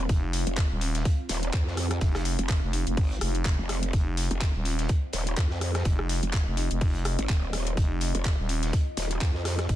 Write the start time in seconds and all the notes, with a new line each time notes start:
Already playing: C4 F4 F5
0.09 F1, kick, closed hi-hat
0.33 closed hi-hat, open hi-hat
0.47 F1, closed hi-hat
0.57 kick, snare, clap, closed hi-hat
0.71 D#1
0.81 closed hi-hat, open hi-hat
0.95 snare, closed hi-hat
1.05 kick, closed hi-hat
1.29 D#1, snare, closed hi-hat, open hi-hat
1.43 closed hi-hat
1.53 F2, kick, clap, closed hi-hat
1.68 snare
1.77 cross-stick, closed hi-hat, open hi-hat
1.91 cross-stick, closed hi-hat
2.01 F1, kick, snare, closed hi-hat
2.15 cross-stick, snare, closed hi-hat
2.25 closed hi-hat, open hi-hat
2.39 F1, closed hi-hat
2.49 kick, snare, clap, closed hi-hat
2.63 F1
2.73 closed hi-hat, open hi-hat
2.87 F1, closed hi-hat
2.97 G#1, kick, closed hi-hat, open hi-hat
3.11 closed hi-hat
3.21 F1, cross-stick, closed hi-hat, open hi-hat
3.35 closed hi-hat
3.45 kick, snare, clap, closed hi-hat
3.59 F1
3.68 cross-stick, snare, closed hi-hat, open hi-hat
3.83 closed hi-hat
3.93 F1 D#5, kick, closed hi-hat
4.17 closed hi-hat, open hi-hat
4.31 F1, closed hi-hat
4.41 kick, snare, clap, closed hi-hat
4.55 D#1
4.65 closed hi-hat, open hi-hat
4.79 snare, closed hi-hat
4.89 kick, closed hi-hat
5.13 D#1, snare, closed hi-hat, open hi-hat
5.27 closed hi-hat
5.37 F2, kick, snare, clap, closed hi-hat
5.50 snare
5.61 cross-stick, closed hi-hat, open hi-hat
5.75 cross-stick, snare, closed hi-hat
5.85 F1, kick, closed hi-hat
5.99 cross-stick
6.09 closed hi-hat, open hi-hat
6.23 F1, closed hi-hat
6.33 kick, snare, clap, closed hi-hat
6.47 F1
6.57 closed hi-hat, open hi-hat
6.71 F1, closed hi-hat
6.81 kick, closed hi-hat, open hi-hat
6.95 closed hi-hat
7.05 cross-stick, closed hi-hat, open hi-hat
7.19 G#1, closed hi-hat
7.29 D#1, kick, snare, clap, closed hi-hat
7.53 cross-stick, snare, closed hi-hat, open hi-hat
7.67 closed hi-hat
7.77 F1, kick, closed hi-hat
8.01 closed hi-hat, open hi-hat
8.15 F1, closed hi-hat
8.25 kick, snare, clap, closed hi-hat
8.39 D#1
8.49 closed hi-hat, open hi-hat
8.63 snare, closed hi-hat
8.73 kick, closed hi-hat
8.97 D#1, snare, closed hi-hat, open hi-hat
9.11 closed hi-hat
9.21 F2, kick, snare, clap, closed hi-hat
9.34 snare
9.45 cross-stick, snare, closed hi-hat, open hi-hat
9.59 cross-stick, snare, closed hi-hat
9.69 F1, kick, closed hi-hat